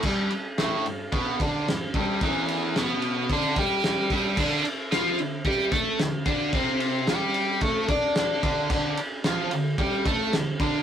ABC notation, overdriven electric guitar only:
X:1
M:4/4
L:1/8
Q:1/4=111
K:D
V:1 name="Overdriven electric guitar" clef=bass
[G,,G,] z [A,,A,] G,, [B,,B,] [D,D] G,, [G,,G,] | [E,,E,]2 [B,,B,]2 [D,D] [G,G]2 [G,,G,] | [D,D] z [=F,=F] D, [G,G] [A,A] D, [D,D] | [=C,=C]2 [G,G]2 [A,A] [Dd]2 [D,D] |
[D,D] z [=F,=F] D, [G,G] [A,A] D, [D,D] |]